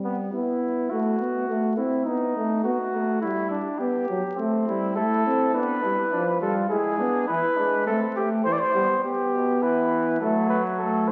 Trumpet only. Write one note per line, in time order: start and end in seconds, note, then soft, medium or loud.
4.67 4.94 E4 medium
4.96 5.53 A4 medium
5.55 6.39 B4 medium
6.41 6.54 A4 medium
6.70 7.27 G#4 medium
7.28 7.85 B4 medium
7.87 8.00 A4 medium
8.16 8.29 G4 medium
8.45 8.54 C5 medium
8.52 8.61 D5 medium
8.60 9.03 C5 medium
9.04 9.64 G4 medium
9.62 10.20 B4 medium
10.20 10.49 A4 medium
10.49 10.63 B4 medium
10.79 11.10 A4 medium
11.08 11.12 C5 medium